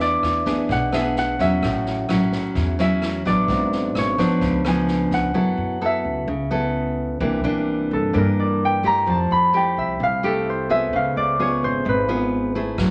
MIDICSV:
0, 0, Header, 1, 5, 480
1, 0, Start_track
1, 0, Tempo, 465116
1, 1672, Time_signature, 4, 2, 24, 8
1, 13318, End_track
2, 0, Start_track
2, 0, Title_t, "Harp"
2, 0, Program_c, 0, 46
2, 0, Note_on_c, 0, 71, 72
2, 0, Note_on_c, 0, 76, 75
2, 13, Note_on_c, 0, 74, 84
2, 684, Note_off_c, 0, 71, 0
2, 743, Note_on_c, 0, 78, 89
2, 967, Note_off_c, 0, 76, 0
2, 971, Note_on_c, 0, 76, 69
2, 1219, Note_off_c, 0, 78, 0
2, 1223, Note_on_c, 0, 78, 101
2, 1452, Note_off_c, 0, 76, 0
2, 1456, Note_on_c, 0, 76, 86
2, 1919, Note_off_c, 0, 74, 0
2, 2882, Note_off_c, 0, 78, 0
2, 2897, Note_off_c, 0, 76, 0
2, 2901, Note_on_c, 0, 76, 87
2, 3373, Note_on_c, 0, 74, 89
2, 4113, Note_on_c, 0, 73, 75
2, 4175, Note_off_c, 0, 74, 0
2, 4679, Note_off_c, 0, 76, 0
2, 4825, Note_on_c, 0, 80, 75
2, 5303, Note_on_c, 0, 78, 86
2, 6044, Note_on_c, 0, 76, 82
2, 6086, Note_off_c, 0, 73, 0
2, 6373, Note_off_c, 0, 80, 0
2, 6962, Note_off_c, 0, 78, 0
2, 7822, Note_off_c, 0, 76, 0
2, 8186, Note_on_c, 0, 69, 73
2, 8441, Note_on_c, 0, 70, 69
2, 8503, Note_off_c, 0, 69, 0
2, 8664, Note_on_c, 0, 74, 66
2, 8927, Note_on_c, 0, 79, 83
2, 9147, Note_on_c, 0, 82, 112
2, 9388, Note_on_c, 0, 81, 70
2, 9450, Note_off_c, 0, 70, 0
2, 9450, Note_off_c, 0, 82, 0
2, 9618, Note_on_c, 0, 83, 91
2, 9866, Note_off_c, 0, 79, 0
2, 9870, Note_on_c, 0, 79, 70
2, 10097, Note_on_c, 0, 76, 75
2, 10354, Note_on_c, 0, 77, 88
2, 10416, Note_off_c, 0, 76, 0
2, 10570, Note_off_c, 0, 74, 0
2, 10580, Note_on_c, 0, 69, 61
2, 10832, Note_on_c, 0, 72, 73
2, 10883, Note_off_c, 0, 81, 0
2, 10893, Note_off_c, 0, 83, 0
2, 11051, Note_on_c, 0, 76, 87
2, 11113, Note_off_c, 0, 77, 0
2, 11309, Note_on_c, 0, 77, 77
2, 11371, Note_off_c, 0, 76, 0
2, 11473, Note_off_c, 0, 79, 0
2, 11529, Note_on_c, 0, 74, 91
2, 11786, Note_on_c, 0, 73, 69
2, 11848, Note_off_c, 0, 72, 0
2, 11848, Note_off_c, 0, 74, 0
2, 12014, Note_on_c, 0, 72, 85
2, 12076, Note_off_c, 0, 73, 0
2, 12268, Note_on_c, 0, 71, 69
2, 12330, Note_off_c, 0, 72, 0
2, 12846, Note_off_c, 0, 69, 0
2, 13027, Note_off_c, 0, 77, 0
2, 13318, Note_off_c, 0, 71, 0
2, 13318, End_track
3, 0, Start_track
3, 0, Title_t, "Nylon-string guitar"
3, 0, Program_c, 1, 24
3, 0, Note_on_c, 1, 52, 64
3, 0, Note_on_c, 1, 59, 60
3, 0, Note_on_c, 1, 62, 60
3, 0, Note_on_c, 1, 68, 59
3, 434, Note_off_c, 1, 59, 0
3, 437, Note_off_c, 1, 62, 0
3, 438, Note_off_c, 1, 68, 0
3, 475, Note_on_c, 1, 59, 60
3, 479, Note_on_c, 1, 62, 62
3, 484, Note_on_c, 1, 68, 59
3, 690, Note_off_c, 1, 52, 0
3, 714, Note_on_c, 1, 47, 60
3, 915, Note_off_c, 1, 59, 0
3, 918, Note_off_c, 1, 62, 0
3, 919, Note_off_c, 1, 68, 0
3, 960, Note_on_c, 1, 59, 64
3, 967, Note_on_c, 1, 62, 62
3, 971, Note_on_c, 1, 68, 70
3, 1398, Note_off_c, 1, 59, 0
3, 1400, Note_off_c, 1, 62, 0
3, 1403, Note_off_c, 1, 68, 0
3, 1445, Note_on_c, 1, 54, 58
3, 1447, Note_on_c, 1, 61, 59
3, 1449, Note_on_c, 1, 64, 61
3, 1650, Note_off_c, 1, 47, 0
3, 1681, Note_on_c, 1, 45, 58
3, 2120, Note_off_c, 1, 61, 0
3, 2121, Note_off_c, 1, 54, 0
3, 2123, Note_off_c, 1, 64, 0
3, 2161, Note_on_c, 1, 54, 59
3, 2167, Note_on_c, 1, 61, 57
3, 2168, Note_on_c, 1, 64, 64
3, 2613, Note_off_c, 1, 45, 0
3, 2643, Note_on_c, 1, 52, 50
3, 2839, Note_off_c, 1, 54, 0
3, 2841, Note_off_c, 1, 61, 0
3, 2843, Note_off_c, 1, 64, 0
3, 2878, Note_on_c, 1, 54, 75
3, 2886, Note_on_c, 1, 61, 57
3, 2890, Note_on_c, 1, 64, 79
3, 3318, Note_off_c, 1, 54, 0
3, 3322, Note_off_c, 1, 61, 0
3, 3323, Note_off_c, 1, 64, 0
3, 3358, Note_on_c, 1, 54, 55
3, 3363, Note_on_c, 1, 59, 58
3, 3369, Note_on_c, 1, 62, 57
3, 3575, Note_off_c, 1, 52, 0
3, 3603, Note_on_c, 1, 44, 59
3, 4278, Note_off_c, 1, 54, 0
3, 4281, Note_off_c, 1, 59, 0
3, 4284, Note_off_c, 1, 62, 0
3, 4317, Note_on_c, 1, 53, 65
3, 4324, Note_on_c, 1, 59, 62
3, 4327, Note_on_c, 1, 62, 71
3, 4536, Note_off_c, 1, 44, 0
3, 4555, Note_on_c, 1, 49, 51
3, 4759, Note_off_c, 1, 53, 0
3, 4760, Note_off_c, 1, 59, 0
3, 4763, Note_off_c, 1, 62, 0
3, 4802, Note_on_c, 1, 53, 53
3, 4807, Note_on_c, 1, 59, 66
3, 4813, Note_on_c, 1, 62, 65
3, 5481, Note_off_c, 1, 53, 0
3, 5483, Note_off_c, 1, 59, 0
3, 5487, Note_off_c, 1, 62, 0
3, 5492, Note_off_c, 1, 49, 0
3, 5512, Note_on_c, 1, 54, 54
3, 5514, Note_on_c, 1, 59, 54
3, 5520, Note_on_c, 1, 64, 64
3, 5521, Note_on_c, 1, 69, 60
3, 5957, Note_off_c, 1, 59, 0
3, 5958, Note_off_c, 1, 64, 0
3, 5961, Note_off_c, 1, 69, 0
3, 5999, Note_on_c, 1, 59, 55
3, 6003, Note_on_c, 1, 64, 54
3, 6005, Note_on_c, 1, 69, 58
3, 6452, Note_off_c, 1, 54, 0
3, 6476, Note_off_c, 1, 59, 0
3, 6477, Note_off_c, 1, 64, 0
3, 6478, Note_off_c, 1, 69, 0
3, 6478, Note_on_c, 1, 49, 51
3, 6714, Note_on_c, 1, 59, 62
3, 6720, Note_on_c, 1, 64, 66
3, 6725, Note_on_c, 1, 69, 66
3, 7414, Note_off_c, 1, 49, 0
3, 7417, Note_off_c, 1, 59, 0
3, 7421, Note_off_c, 1, 64, 0
3, 7421, Note_off_c, 1, 69, 0
3, 7436, Note_on_c, 1, 48, 63
3, 7438, Note_on_c, 1, 52, 58
3, 7440, Note_on_c, 1, 58, 56
3, 7445, Note_on_c, 1, 62, 53
3, 7639, Note_off_c, 1, 52, 0
3, 7641, Note_off_c, 1, 58, 0
3, 7643, Note_off_c, 1, 62, 0
3, 7675, Note_on_c, 1, 52, 58
3, 7682, Note_on_c, 1, 58, 68
3, 7684, Note_on_c, 1, 62, 71
3, 8359, Note_off_c, 1, 52, 0
3, 8361, Note_off_c, 1, 58, 0
3, 8363, Note_off_c, 1, 62, 0
3, 8374, Note_off_c, 1, 48, 0
3, 8392, Note_on_c, 1, 43, 54
3, 8399, Note_on_c, 1, 52, 52
3, 8399, Note_on_c, 1, 58, 47
3, 8405, Note_on_c, 1, 62, 53
3, 9079, Note_off_c, 1, 52, 0
3, 9080, Note_off_c, 1, 58, 0
3, 9083, Note_off_c, 1, 62, 0
3, 9116, Note_on_c, 1, 57, 59
3, 9122, Note_on_c, 1, 64, 55
3, 9126, Note_on_c, 1, 67, 60
3, 9332, Note_off_c, 1, 43, 0
3, 9354, Note_on_c, 1, 53, 55
3, 9799, Note_off_c, 1, 57, 0
3, 9800, Note_off_c, 1, 64, 0
3, 9803, Note_off_c, 1, 67, 0
3, 9836, Note_on_c, 1, 57, 48
3, 9841, Note_on_c, 1, 64, 51
3, 9845, Note_on_c, 1, 67, 66
3, 10292, Note_off_c, 1, 53, 0
3, 10316, Note_on_c, 1, 48, 55
3, 10518, Note_off_c, 1, 57, 0
3, 10520, Note_off_c, 1, 64, 0
3, 10522, Note_off_c, 1, 67, 0
3, 10558, Note_on_c, 1, 57, 57
3, 10561, Note_on_c, 1, 64, 68
3, 10568, Note_on_c, 1, 67, 67
3, 10998, Note_off_c, 1, 57, 0
3, 11001, Note_off_c, 1, 64, 0
3, 11003, Note_off_c, 1, 67, 0
3, 11037, Note_on_c, 1, 59, 50
3, 11041, Note_on_c, 1, 65, 54
3, 11047, Note_on_c, 1, 68, 66
3, 11251, Note_off_c, 1, 48, 0
3, 11278, Note_on_c, 1, 49, 60
3, 11717, Note_off_c, 1, 59, 0
3, 11720, Note_off_c, 1, 65, 0
3, 11721, Note_off_c, 1, 68, 0
3, 11759, Note_on_c, 1, 59, 56
3, 11764, Note_on_c, 1, 65, 58
3, 11765, Note_on_c, 1, 68, 64
3, 12211, Note_off_c, 1, 49, 0
3, 12230, Note_on_c, 1, 44, 51
3, 12234, Note_off_c, 1, 59, 0
3, 12235, Note_off_c, 1, 65, 0
3, 12236, Note_off_c, 1, 68, 0
3, 12472, Note_on_c, 1, 59, 68
3, 12475, Note_on_c, 1, 65, 63
3, 12478, Note_on_c, 1, 68, 67
3, 12914, Note_off_c, 1, 59, 0
3, 12915, Note_off_c, 1, 65, 0
3, 12917, Note_off_c, 1, 68, 0
3, 12954, Note_on_c, 1, 57, 48
3, 12955, Note_on_c, 1, 64, 50
3, 12962, Note_on_c, 1, 68, 59
3, 13166, Note_off_c, 1, 44, 0
3, 13195, Note_on_c, 1, 54, 60
3, 13318, Note_off_c, 1, 54, 0
3, 13318, Note_off_c, 1, 57, 0
3, 13318, Note_off_c, 1, 64, 0
3, 13318, Note_off_c, 1, 68, 0
3, 13318, End_track
4, 0, Start_track
4, 0, Title_t, "Upright bass"
4, 0, Program_c, 2, 32
4, 0, Note_on_c, 2, 40, 93
4, 196, Note_off_c, 2, 40, 0
4, 233, Note_on_c, 2, 40, 82
4, 455, Note_off_c, 2, 40, 0
4, 711, Note_on_c, 2, 35, 86
4, 1391, Note_off_c, 2, 35, 0
4, 1437, Note_on_c, 2, 40, 101
4, 1658, Note_off_c, 2, 40, 0
4, 1676, Note_on_c, 2, 33, 88
4, 2121, Note_off_c, 2, 33, 0
4, 2163, Note_on_c, 2, 33, 81
4, 2381, Note_off_c, 2, 33, 0
4, 2637, Note_on_c, 2, 40, 100
4, 3314, Note_off_c, 2, 40, 0
4, 3358, Note_on_c, 2, 33, 82
4, 3579, Note_off_c, 2, 33, 0
4, 3595, Note_on_c, 2, 32, 89
4, 4042, Note_off_c, 2, 32, 0
4, 4078, Note_on_c, 2, 32, 78
4, 4300, Note_off_c, 2, 32, 0
4, 4554, Note_on_c, 2, 37, 83
4, 5234, Note_off_c, 2, 37, 0
4, 5274, Note_on_c, 2, 37, 83
4, 5499, Note_off_c, 2, 37, 0
4, 5516, Note_on_c, 2, 42, 101
4, 5740, Note_off_c, 2, 42, 0
4, 5752, Note_on_c, 2, 42, 82
4, 6201, Note_off_c, 2, 42, 0
4, 6238, Note_on_c, 2, 37, 78
4, 6461, Note_off_c, 2, 37, 0
4, 6477, Note_on_c, 2, 37, 96
4, 7396, Note_off_c, 2, 37, 0
4, 7435, Note_on_c, 2, 36, 101
4, 7660, Note_off_c, 2, 36, 0
4, 7678, Note_on_c, 2, 36, 79
4, 8124, Note_off_c, 2, 36, 0
4, 8163, Note_on_c, 2, 43, 83
4, 8384, Note_off_c, 2, 43, 0
4, 8407, Note_on_c, 2, 43, 99
4, 9321, Note_off_c, 2, 43, 0
4, 9364, Note_on_c, 2, 41, 103
4, 9584, Note_off_c, 2, 41, 0
4, 9605, Note_on_c, 2, 41, 80
4, 10048, Note_off_c, 2, 41, 0
4, 10084, Note_on_c, 2, 36, 76
4, 10304, Note_off_c, 2, 36, 0
4, 10320, Note_on_c, 2, 36, 94
4, 11236, Note_off_c, 2, 36, 0
4, 11283, Note_on_c, 2, 37, 92
4, 11503, Note_off_c, 2, 37, 0
4, 11519, Note_on_c, 2, 37, 75
4, 11963, Note_off_c, 2, 37, 0
4, 12000, Note_on_c, 2, 32, 72
4, 12220, Note_off_c, 2, 32, 0
4, 12238, Note_on_c, 2, 32, 99
4, 13153, Note_off_c, 2, 32, 0
4, 13190, Note_on_c, 2, 42, 85
4, 13318, Note_off_c, 2, 42, 0
4, 13318, End_track
5, 0, Start_track
5, 0, Title_t, "Drums"
5, 238, Note_on_c, 9, 37, 52
5, 238, Note_on_c, 9, 38, 20
5, 341, Note_off_c, 9, 37, 0
5, 341, Note_off_c, 9, 38, 0
5, 472, Note_on_c, 9, 36, 25
5, 472, Note_on_c, 9, 38, 26
5, 576, Note_off_c, 9, 36, 0
5, 576, Note_off_c, 9, 38, 0
5, 714, Note_on_c, 9, 36, 55
5, 717, Note_on_c, 9, 38, 22
5, 817, Note_off_c, 9, 36, 0
5, 820, Note_off_c, 9, 38, 0
5, 954, Note_on_c, 9, 37, 55
5, 954, Note_on_c, 9, 38, 23
5, 1057, Note_off_c, 9, 37, 0
5, 1057, Note_off_c, 9, 38, 0
5, 1197, Note_on_c, 9, 38, 26
5, 1300, Note_off_c, 9, 38, 0
5, 1436, Note_on_c, 9, 36, 23
5, 1436, Note_on_c, 9, 38, 23
5, 1539, Note_off_c, 9, 36, 0
5, 1540, Note_off_c, 9, 38, 0
5, 1677, Note_on_c, 9, 36, 55
5, 1679, Note_on_c, 9, 37, 60
5, 1679, Note_on_c, 9, 38, 21
5, 1780, Note_off_c, 9, 36, 0
5, 1782, Note_off_c, 9, 37, 0
5, 1782, Note_off_c, 9, 38, 0
5, 1917, Note_on_c, 9, 38, 22
5, 2021, Note_off_c, 9, 38, 0
5, 2155, Note_on_c, 9, 37, 57
5, 2155, Note_on_c, 9, 38, 21
5, 2258, Note_off_c, 9, 37, 0
5, 2258, Note_off_c, 9, 38, 0
5, 2395, Note_on_c, 9, 38, 27
5, 2396, Note_on_c, 9, 36, 23
5, 2499, Note_off_c, 9, 36, 0
5, 2499, Note_off_c, 9, 38, 0
5, 2635, Note_on_c, 9, 36, 53
5, 2636, Note_on_c, 9, 38, 24
5, 2739, Note_off_c, 9, 36, 0
5, 2739, Note_off_c, 9, 38, 0
5, 2876, Note_on_c, 9, 38, 22
5, 2979, Note_off_c, 9, 38, 0
5, 3116, Note_on_c, 9, 37, 61
5, 3116, Note_on_c, 9, 38, 24
5, 3219, Note_off_c, 9, 37, 0
5, 3219, Note_off_c, 9, 38, 0
5, 3356, Note_on_c, 9, 36, 21
5, 3358, Note_on_c, 9, 38, 20
5, 3459, Note_off_c, 9, 36, 0
5, 3461, Note_off_c, 9, 38, 0
5, 3593, Note_on_c, 9, 38, 24
5, 3594, Note_on_c, 9, 36, 65
5, 3697, Note_off_c, 9, 38, 0
5, 3698, Note_off_c, 9, 36, 0
5, 3839, Note_on_c, 9, 38, 21
5, 3943, Note_off_c, 9, 38, 0
5, 4078, Note_on_c, 9, 37, 57
5, 4078, Note_on_c, 9, 38, 21
5, 4181, Note_off_c, 9, 37, 0
5, 4181, Note_off_c, 9, 38, 0
5, 4316, Note_on_c, 9, 36, 25
5, 4319, Note_on_c, 9, 38, 26
5, 4419, Note_off_c, 9, 36, 0
5, 4422, Note_off_c, 9, 38, 0
5, 4550, Note_on_c, 9, 38, 21
5, 4555, Note_on_c, 9, 36, 58
5, 4654, Note_off_c, 9, 38, 0
5, 4658, Note_off_c, 9, 36, 0
5, 4794, Note_on_c, 9, 37, 53
5, 4794, Note_on_c, 9, 38, 24
5, 4897, Note_off_c, 9, 37, 0
5, 4897, Note_off_c, 9, 38, 0
5, 5032, Note_on_c, 9, 38, 21
5, 5135, Note_off_c, 9, 38, 0
5, 5275, Note_on_c, 9, 36, 22
5, 5277, Note_on_c, 9, 38, 23
5, 5378, Note_off_c, 9, 36, 0
5, 5380, Note_off_c, 9, 38, 0
5, 13189, Note_on_c, 9, 37, 62
5, 13189, Note_on_c, 9, 38, 24
5, 13190, Note_on_c, 9, 36, 57
5, 13293, Note_off_c, 9, 37, 0
5, 13293, Note_off_c, 9, 38, 0
5, 13294, Note_off_c, 9, 36, 0
5, 13318, End_track
0, 0, End_of_file